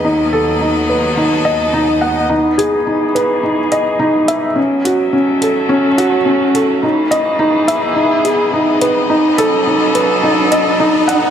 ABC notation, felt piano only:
X:1
M:4/4
L:1/8
Q:1/4=106
K:E
V:1 name="Felt piano"
D A D B D d D f | D G D B D d D e | C F C A C F C A | D d D e D G D B |
D A D B D d D f |]